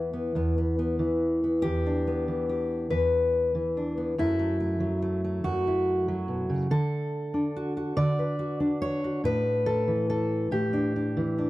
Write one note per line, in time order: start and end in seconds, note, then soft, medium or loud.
0.00 0.34 E2 medium
0.00 0.98 E3 soft
0.00 0.12 B3 soft
0.00 1.63 E4 medium
0.13 0.34 B3 soft
0.35 1.63 E2 medium
0.35 0.56 B3 soft
0.58 0.78 B3 soft
0.79 1.42 B3 soft
0.99 2.27 E3 soft
1.44 1.59 B3 soft
1.62 2.90 E2 medium
1.62 2.48 G4 loud
1.86 3.76 D4 soft
2.07 3.96 B3 soft
2.28 3.54 E3 soft
2.49 2.90 G4 soft
2.90 4.18 E2 medium
2.90 4.18 B4 medium
3.55 4.18 E3 medium
3.77 4.13 D4 soft
3.98 4.13 B3 soft
4.18 5.43 F#2 medium
4.18 4.80 F#3 soft
4.18 4.39 A3 soft
4.18 5.66 E4 medium
4.39 4.60 A3 soft
4.60 5.02 A3 soft
4.80 6.07 F#3 soft
5.02 5.24 A3 soft
5.24 7.56 A3 soft
5.44 6.66 F#2 medium
5.44 6.71 F#4 medium
5.67 6.67 E4 soft
6.08 6.66 F#3 medium
6.28 6.49 B2 soft
6.50 6.71 C#3 medium
6.71 7.96 D3 medium
6.71 8.18 A4 medium
7.34 8.60 D4 medium
7.56 7.76 F#4 soft
7.77 8.38 F#4 soft
7.97 9.19 D3 medium
7.97 8.81 D5 medium
8.19 9.19 B4 soft
8.39 9.03 F#4 soft
8.60 9.87 D4 medium
8.82 9.24 C#5 medium
9.04 9.20 F#4 soft
9.24 10.50 A2 medium
9.24 10.52 B4 loud
9.66 10.09 A4 medium
9.88 11.16 E3 soft
10.10 10.52 A4 medium
10.51 11.50 A2 medium
10.51 11.50 G4 medium
10.73 10.95 D4 soft
10.96 11.37 D4 soft
11.17 11.50 E3 medium
11.38 11.50 D4 soft